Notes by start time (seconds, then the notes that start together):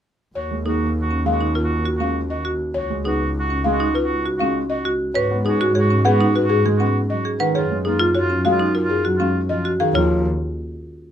0.35 D#2 F#4 C#5
0.51 G#3
0.65 A#3 D#4 F#4 G#4
1.01 F#4
1.11 C#4
1.25 G#3 F5
1.32 F#4
1.40 D#4
1.55 F4 A#4
1.64 F#4
1.86 F#4
1.96 C#4 F#4
2.00 G#3 F5
2.29 F#4 D#5
2.45 F#4
2.74 C#2 F#4 C#5
2.90 G#3
3.04 B3 D#4 F#4 G#4
3.39 F#4
3.50 C#4
3.64 G#3 F5
3.72 F#4
3.80 D#4
3.95 F4 B4
4.04 F#4
4.26 F#4
4.37 C#4 F#4 F5
4.41 G#3
4.69 F#4 D#5
4.85 F#4
5.14 G#2 F#4 B4 C#5
5.31 B3
5.45 C#4 D#4 F#4 G#4
5.61 F#4
5.75 G#4 C#5
5.79 F#4
5.90 C#4
6.05 B3 G#4 F#5
6.12 F#4
6.21 D#4
6.35 F#4 B4
6.44 F#4
6.49 G#4
6.65 G#3 G#4
6.76 F#4
6.80 B3 C#4 F#5
7.08 F#3 F#4 D#5
7.25 G#4
7.40 D#3 B4 F#5
7.55 F#2 F4 G#4 C#5
7.71 G#3
7.85 A#3 D#4 F4 G#4
7.99 F4
8.15 F#4 C#5
8.19 F4
8.30 C#4
8.45 G#3 F#4 F5
8.51 F4
8.60 D#4
8.75 F4 A#4
8.83 F4
8.90 G#4
9.05 F#3 F#4
9.16 C#4 F4 F5
9.20 G#3
9.49 F3 F4 D#5
9.65 F#4
9.80 D#3 G#4 F5
9.94 D#2 F3 F4 C#5